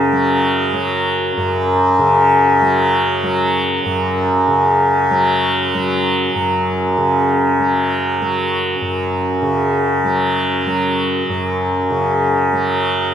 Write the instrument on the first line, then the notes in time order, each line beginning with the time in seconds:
tanpura
Already playing: F#2 C#3 F#3
0.12 F#3
0.73 F#3
1.37 F#2
1.99 C#3
2.62 F#3
3.23 F#3
3.86 F#2
4.48 C#3
5.11 F#3
5.74 F#3
6.35 F#2
6.97 C#3
7.60 F#3
8.22 F#3
8.81 F#2
9.42 C#3
10.04 F#3
10.66 F#3
11.29 F#2
11.90 C#3
12.53 F#3